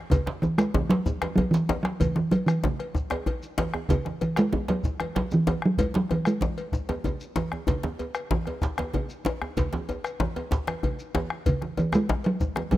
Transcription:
0.10 C#3, bombo low, cowbell, djembe tone, djembe bass, low conga, shekere
0.26 bombo rim, djembe slap, high conga
0.42 E3, djembe slap, djembe tone, shekere
0.58 G#3, bombo rim, cowbell, djembe slap, shekere
0.74 djembe slap, djembe tone, high conga, djembe bass, low conga
0.90 F#3, bombo rim, cowbell, djembe slap, high conga
1.06 bombo low, djembe tone, shekere
1.22 bombo rim, cowbell, djembe slap, high conga
1.36 F#3, bombo rim, cowbell, djembe tone, djembe bass, low conga
1.51 E3, djembe slap, high conga, shekere
1.69 cowbell, djembe slap, djembe tone, high conga
1.83 F#3, bombo rim, djembe slap
2.00 E3, bombo low, cowbell, djembe bass, low conga, shekere
2.16 E3, bombo rim, djembe slap, high conga
2.31 F#3, cowbell, djembe slap, djembe tone, shekere
2.46 E3, bombo rim, cowbell, shekere
2.64 djembe slap, high conga, djembe bass, low conga
2.80 bombo rim, cowbell, djembe slap, high conga
2.95 bombo low, djembe tone, shekere
3.10 bombo rim, cowbell, djembe slap, djembe tone
3.26 bombo rim, cowbell, djembe bass, low conga
3.43 high conga, shekere
3.58 cowbell, djembe slap, djembe tone, high conga
3.74 bombo rim, djembe tone
3.89 C#3, bombo low, cowbell, djembe tone, low conga, djembe bass, shekere
4.05 bombo rim, djembe slap, high conga
4.21 E3, cowbell, djembe slap, djembe tone, shekere
4.36 G#3, bombo rim, cowbell, djembe slap, shekere
4.53 high conga, djembe tone, low conga, djembe bass
4.68 F#3, bombo rim, cowbell, djembe slap, djembe tone
4.83 bombo low, djembe tone, shekere
5.00 bombo rim, cowbell, djembe slap, high conga
5.15 F#3, bombo rim, cowbell, djembe slap, djembe bass, low conga
5.31 E3, high conga, djembe tone, shekere
5.47 cowbell, djembe slap, high conga, djembe tone
5.62 F#3, bombo rim
5.77 G#3, bombo low, cowbell, low conga, djembe bass, shekere
5.94 F#3, bombo rim, djembe slap, high conga
6.09 E3, bombo rim, cowbell, high conga, djembe tone
6.25 G#3, bombo rim, cowbell, djembe slap, shekere
6.41 bombo rim, djembe slap, high conga, low conga, djembe bass, shekere
6.57 cowbell, high conga, shekere
6.72 bombo low, djembe tone, high conga, shekere
6.89 cowbell, djembe slap, djembe tone, high conga
7.04 cowbell, djembe tone, low conga, djembe bass, shekere
7.20 djembe slap, shekere
7.36 bombo rim, cowbell, djembe slap, djembe tone, high conga, shekere
7.52 bombo rim, djembe tone
7.67 bombo low, cowbell, djembe slap, djembe bass, low conga, shekere
7.83 bombo rim, djembe slap, djembe tone, high conga
7.99 cowbell, djembe slap, djembe tone, shekere
8.15 bombo rim, cowbell, shekere
8.31 djembe slap, high conga, djembe bass, low conga
8.46 bombo rim, cowbell, djembe slap, high conga, djembe tone
8.62 bombo low, djembe slap, djembe tone, shekere
8.78 bombo rim, cowbell, djembe slap, high conga, djembe tone
8.94 bombo rim, cowbell, djembe tone, low conga, djembe bass
9.09 high conga, shekere
9.25 cowbell, djembe slap, high conga, djembe tone
9.42 bombo rim, djembe tone
9.57 bombo low, cowbell, djembe slap, low conga, djembe bass, shekere
9.73 bombo rim, djembe slap, high conga, djembe tone
9.89 cowbell, djembe tone, shekere
10.04 bombo rim, cowbell, shekere
10.20 djembe slap, high conga, djembe bass, low conga
10.36 cowbell, djembe slap, djembe tone, high conga
10.51 bombo low, djembe slap, djembe tone, shekere
10.67 bombo rim, cowbell, djembe slap, high conga
10.83 bombo rim, cowbell, djembe bass, low conga
10.99 high conga, shekere
11.14 cowbell, djembe slap, high conga, djembe tone
11.30 bombo rim
11.46 C#3, bombo low, cowbell, low conga, djembe bass, shekere
11.62 bombo rim, djembe slap, high conga
11.77 E3, cowbell, djembe slap, djembe tone, shekere
11.92 G#3, bombo rim, cowbell, djembe tone, shekere
12.09 djembe slap, high conga, low conga, djembe bass
12.24 F#3, bombo rim, cowbell, djembe slap, high conga
12.40 bombo low, djembe tone, shekere
12.56 bombo rim, cowbell, djembe slap, djembe tone, high conga
12.71 F#3, bombo rim, cowbell, djembe tone, djembe bass, low conga

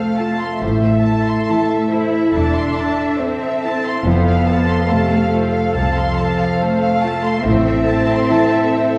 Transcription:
Already playing: F2 C3 A3 F4 A4 F5
0.19 F4 A5
0.41 C6
0.61 A1 A2 A3 A4 C5 E5
0.85 E5
1.04 A5
1.28 C6
1.49 E3 A4 A5
1.71 E5
1.92 E4 C5
2.13 E5
2.34 E1 E3 D4 A5
2.56 C6
2.78 A5
2.99 E5
3.20 C4 A4 C5
3.42 E5
3.64 E4 A5
3.85 C6
4.04 F1 F2 B3 A4 C5 F5
4.29 F5
4.48 A3 A5
4.70 C6
4.90 C3 A3 A4 A5
5.12 F5
5.33 F4 C5
5.53 F5
5.74 C2 C3 F3 A5
5.97 C6
6.18 C4 A5
6.40 F5
6.60 A3 A4 C5
6.82 F5
7.04 F4 A5
7.24 C6
7.44 A1 A2 C4 A4 C5 E5
7.70 E5
7.88 C4 A5
8.12 C6
8.30 E3 A4 A5
8.52 E5
8.73 E4 C5

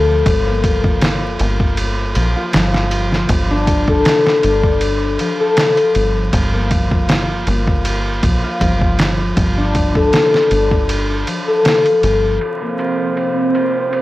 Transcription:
Already playing: D2 F3 D4 A4
0.26 G1 F3, kick, ride
0.47 A#3
0.64 kick, ride
0.84 F4, kick
1.02 snare, ride
1.39 G1 A#3, ride
1.60 kick
1.77 ride
2.15 A#1 F3, ride
2.36 F4
2.53 G1 F3, snare, ride
2.74 snare
2.91 ride
3.12 snare
3.29 G1 F3, kick, ride
3.51 D4
3.67 kick, ride
3.88 A4, kick
4.05 snare, ride
4.27 snare
4.43 G1 D4, ride
4.64 kick
4.81 ride
5.19 F3, ride
5.40 A4
5.57 F3, snare, ride
5.77 ride
5.95 G1, ride
6.33 G1 F3, kick, ride
6.54 A#3
6.71 kick, ride
6.91 F4, kick
7.09 snare, ride
7.47 G1 A#3, ride
7.67 kick
7.85 ride
8.23 A#1 F3, kick, ride
8.44 F4
8.61 G1 F3, kick, ride
8.81 kick
8.99 snare, ride
9.37 G1 F3, kick, ride
9.57 D4
9.75 kick, ride
9.95 A4, kick
10.13 snare, ride
10.34 snare
10.51 G1 D4, ride
10.71 kick
10.89 ride
11.27 F3, ride
11.47 A4
11.65 F3, snare, ride
11.86 ride
12.03 G1, ride
12.40 F3 C4 C5, ride
12.61 A#3
12.79 ride
12.99 F4
13.17 ride
13.54 A#3, ride
13.93 ride

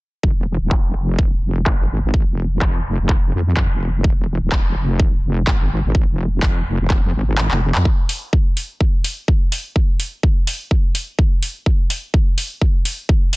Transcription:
0.23 F1, kick
0.37 F1
0.61 D#1
0.71 kick, clap
0.95 F1
1.19 kick
1.42 F1
1.66 G#1, kick, clap
2.03 G#1
2.14 kick
2.27 F1
2.61 F1, kick, clap
2.99 F1
3.09 kick, clap
3.33 F2
3.57 kick, clap
3.70 F1
4.04 F1, kick
4.18 F1
4.41 D#1
4.52 kick, clap
4.76 F1
5.00 kick
5.23 F1
5.47 G#1, kick, clap
5.84 G#1
5.95 kick
6.08 F1
6.42 F1, kick, clap
6.80 F1
6.90 kick, clap
7.03 F2
7.14 G#1
7.38 clap
7.51 F1, clap
7.75 F2, clap
7.85 kick
8.09 open hi-hat
8.33 kick
8.57 open hi-hat
8.81 kick
9.04 open hi-hat
9.28 kick
9.52 open hi-hat
9.76 kick
10.00 open hi-hat
10.23 kick
10.47 open hi-hat
10.71 kick
10.95 open hi-hat
11.19 kick
11.43 open hi-hat
11.66 kick
11.90 open hi-hat
12.14 kick
12.38 open hi-hat
12.61 kick
12.85 open hi-hat
13.09 kick
13.33 open hi-hat

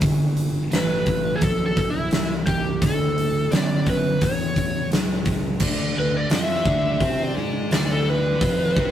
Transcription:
0.01 G1 G2 D3, kick, open hi-hat
0.37 open hi-hat
0.70 A1 G2 E3 B4, snare, open hi-hat
1.06 G2 E3, kick, open hi-hat
1.36 G#4
1.41 B1 G2 F3 A4, kick, open hi-hat
1.66 A4
1.77 kick, open hi-hat
1.90 E4
2.11 C2 G2 E3, snare, open hi-hat
2.46 G2 E3 G4, kick, open hi-hat
2.81 D2 D3 A3 A4, kick, open hi-hat
3.18 open hi-hat
3.51 F#2 D3 B3 D5, snare, open hi-hat
3.86 D3 B3 B4, kick, open hi-hat
4.21 E2 A2 E3 C#5, kick, open hi-hat
4.56 kick, open hi-hat
4.91 C#2 A2 F#3, snare, open hi-hat
5.25 A2 F#3, kick, open hi-hat
5.60 D2 D3 D4, kick, crash
5.96 D2 D3 B4
6.17 D5
6.30 F2 F3 F4, snare, open hi-hat
6.35 E5
6.65 D2 D3 D4, kick
7.00 C3 C4 C5, kick, open hi-hat
7.29 D5
7.36 G#2 G#3 G#4
7.71 D2 D3 D4 D5, snare, open hi-hat
7.92 A4
8.10 B4
8.41 F2 F3 F4, kick, open hi-hat
8.76 C2 C3 C4, kick

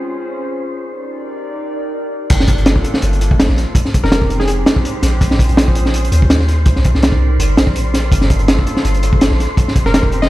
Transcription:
Already playing: C#4 F4 G#4 C5 C6
0.84 D#4 G4 A#4 D5
2.30 G1 A#3 D4 F4 A4 C5 C6, kick, closed hi-hat, crash
2.40 snare
2.47 kick, closed hi-hat
2.58 closed hi-hat
2.66 snare, closed hi-hat
2.76 kick
2.84 closed hi-hat
2.94 snare
3.02 G1, closed hi-hat
3.13 closed hi-hat
3.21 closed hi-hat
3.31 kick
3.40 snare, closed hi-hat
3.49 A#1, snare
3.57 snare, closed hi-hat
3.75 G#3 C4 D#4 G4, kick, closed hi-hat
3.85 snare
3.94 kick, closed hi-hat
4.04 F1 A#4, snare
4.12 A#4, snare, closed hi-hat
4.22 kick
4.30 closed hi-hat
4.40 G#4, snare
4.48 G#4, closed hi-hat
4.66 snare, closed hi-hat
4.76 kick
4.85 closed hi-hat
5.02 A#1, snare, closed hi-hat
5.21 C#4 F4 G#4 C5, kick, closed hi-hat
5.31 snare
5.39 kick, closed hi-hat
5.49 A#1, closed hi-hat
5.57 snare, closed hi-hat
5.68 kick
5.75 closed hi-hat
5.86 snare
5.94 closed hi-hat
6.05 closed hi-hat
6.12 D#2, closed hi-hat
6.22 kick
6.30 snare, closed hi-hat
6.40 snare
6.48 snare, closed hi-hat
6.66 C2 D#4 G4 A#4 D5, kick, closed hi-hat
6.76 snare
6.84 kick, closed hi-hat
6.95 C2, snare
7.03 snare, closed hi-hat
7.12 kick
7.39 G1, closed hi-hat
7.57 A#1, snare, closed hi-hat
7.67 kick
7.76 closed hi-hat
7.94 snare, closed hi-hat
8.12 G1 A#3 D4 F4 A4, kick, closed hi-hat
8.21 snare
8.30 kick, closed hi-hat
8.39 closed hi-hat
8.48 snare, closed hi-hat
8.59 kick
8.67 closed hi-hat
8.77 snare
8.85 G1, closed hi-hat
8.94 closed hi-hat
9.03 closed hi-hat
9.13 kick
9.21 snare, closed hi-hat
9.31 A#1, snare
9.40 snare, closed hi-hat
9.57 G#3 C4 D#4 G4, kick, closed hi-hat
9.68 snare
9.76 kick, closed hi-hat
9.86 F1 A#4, snare
9.94 A#4, snare, closed hi-hat
10.03 kick
10.12 closed hi-hat
10.22 D#5, snare

